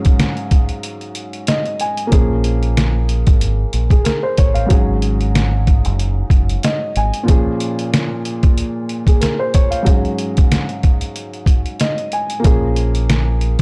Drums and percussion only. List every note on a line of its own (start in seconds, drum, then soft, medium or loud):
0.05 kick medium
0.05 closed hi-hat medium
0.19 snare loud
0.19 closed hi-hat medium
0.37 closed hi-hat soft
0.51 kick medium
0.51 closed hi-hat medium
0.69 closed hi-hat medium
0.83 closed hi-hat medium
1.01 closed hi-hat soft
1.15 closed hi-hat medium
1.33 closed hi-hat medium
1.47 snare loud
1.47 closed hi-hat loud
1.66 closed hi-hat soft
1.80 closed hi-hat medium
1.97 closed hi-hat medium
2.12 kick loud
2.12 closed hi-hat medium
2.44 closed hi-hat medium
2.63 closed hi-hat medium
2.77 snare loud
2.77 closed hi-hat medium
3.09 closed hi-hat medium
3.27 kick loud
3.27 closed hi-hat medium
3.41 closed hi-hat medium
3.73 closed hi-hat medium
3.90 kick medium
3.90 closed hi-hat medium
4.05 snare loud
4.05 closed hi-hat loud
4.38 kick medium
4.38 closed hi-hat medium
4.55 closed hi-hat medium
4.70 kick loud
4.70 closed hi-hat medium
5.02 closed hi-hat medium
5.21 closed hi-hat medium
5.35 snare loud
5.35 closed hi-hat medium
5.67 kick medium
5.67 closed hi-hat medium
5.85 closed hi-hat medium
5.99 closed hi-hat medium
6.30 kick medium
6.30 closed hi-hat medium
6.49 closed hi-hat medium
6.63 snare loud
6.63 closed hi-hat loud
6.96 closed hi-hat medium
7.14 closed hi-hat medium
7.28 kick loud
7.28 closed hi-hat medium
7.60 closed hi-hat medium
7.79 closed hi-hat medium
7.94 snare loud
7.94 closed hi-hat medium
8.25 closed hi-hat medium
8.43 kick loud
8.43 closed hi-hat medium
8.58 closed hi-hat medium
8.89 closed hi-hat medium
9.07 kick medium
9.07 closed hi-hat medium
9.22 snare loud
9.22 closed hi-hat loud
9.54 kick medium
9.54 closed hi-hat medium
9.72 closed hi-hat medium
9.86 kick loud
9.86 closed hi-hat medium
10.05 closed hi-hat soft
10.19 closed hi-hat medium
10.37 kick loud
10.37 closed hi-hat medium
10.52 snare loud
10.52 closed hi-hat medium
10.69 closed hi-hat soft
10.83 kick medium
10.83 closed hi-hat medium
11.01 closed hi-hat medium
11.16 closed hi-hat medium
11.34 closed hi-hat soft
11.46 kick medium
11.46 closed hi-hat medium
11.66 closed hi-hat medium
11.80 snare loud
11.80 closed hi-hat loud
11.98 closed hi-hat soft
12.12 closed hi-hat medium
12.30 closed hi-hat medium
12.44 kick loud
12.44 closed hi-hat medium
12.76 closed hi-hat medium
12.95 closed hi-hat medium
13.10 snare loud
13.10 closed hi-hat medium
13.41 closed hi-hat medium